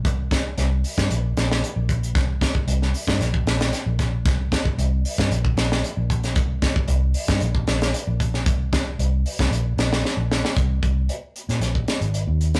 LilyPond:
<<
  \new Staff \with { instrumentName = "Fingered electric bass" } { \clef bass \time 4/4 \key c \minor \tempo 4 = 114 c,4 c,8 r16 g,16 bes,,8 bes,,8 r16 bes,,8. | c,4 c,8 r16 g,16 bes,,8 bes,,8 r16 bes,,8. | c,4 c,8 r16 g,16 bes,,8 bes,,8 r16 bes,,8. | c,4 c,8 r16 g,16 bes,,8 bes,,8 r16 bes,,8. |
c,4 c,8 r16 c,16 bes,,8 bes,,8 r16 bes,,8 r16 | c,8 c,8 r8. bes,16 bes,,8 r16 aes,,8 ees,8. | }
  \new DrumStaff \with { instrumentName = "Drums" } \drummode { \time 4/4 <hh bd>8 <hh bd sn>8 <hh sn>8 hho16 <hh bd sn>16 hh8 <hh sn>16 sn16 hh8 <hh bd>16 hh16 | <hh bd sn>8 <hh bd sn>16 bd16 hh16 sn16 hho16 <hh bd sn>16 <hh sn>16 bd16 <hh sn>16 <hh sn>16 <hh sn>8 <hh bd sn>8 | <hh bd sn>8 <hh bd sn>16 bd16 hh8 hho16 <hh bd sn>16 hh16 bd16 <hh sn>16 sn16 hh8 <hh bd>16 <hh sn>16 | <hh bd>8 <hh bd sn>16 bd16 hh8 hho16 <hh bd sn>16 hh16 bd16 <hh sn>16 <hh sn>16 hh8 <hh bd>16 sn16 |
<hh bd>8 <hh bd sn>8 hh8 hho16 <bd sn>16 hh8 <hh sn>16 sn16 sn8 sn16 sn16 | <hh bd>8 <hh bd>8 hh8 hh16 <hh sn>16 <hh sn>16 bd16 <hh sn>16 hh16 hh8 hh16 <hh sn>16 | }
>>